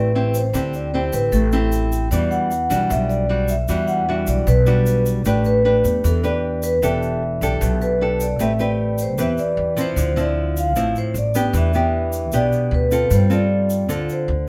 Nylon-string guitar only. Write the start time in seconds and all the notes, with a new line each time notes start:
Already playing: A3 C4 E4 G4
0.15 C4 E4 G4
0.54 D3 C4 E4 G4
0.94 C4 E4 G4
1.33 A3
1.53 C4 E4 G4
2.12 E3 G3 D4 F#4
2.70 G3 D4 F#4
2.89 B2
3.29 G3 D4 F#4
3.69 E3 G3 D4 F#4
4.08 G3 D4 F#4
4.47 B2
4.66 G3 D4 F#4
5.26 A3 D4 G4 B4
5.65 D4 G4 B4
6.04 E3
6.23 D4 G4 B4
6.82 E3 D4 G4 A4
7.42 D4 G4 A4
7.62 B2
8.01 D4 G4 A4
8.40 A3 C4 G4 B4
8.59 C4 G4 B4
9.18 E3 C4 G4 B4
9.77 F3 C4 E4
9.97 D3
10.16 F3 C4 E4
10.76 A2 F3 C4 E4
11.35 B3 D4 G4
11.54 E3
11.74 B3 D4 G4
12.33 B2 B3 D4 G4
12.91 C4 F4 A4
13.10 G3
13.30 C4 F4 A4
13.88 D3 C4 F4 A4